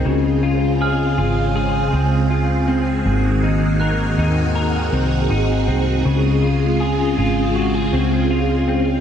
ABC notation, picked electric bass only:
X:1
M:4/4
L:1/8
Q:1/4=80
K:Db
V:1 name="Picked electric bass" clef=bass
D,,3 A,,,2 D,,3 | A,,,3 E,,2 C,, A,,, C,, | D,,3 A,,,2 D,,3 |]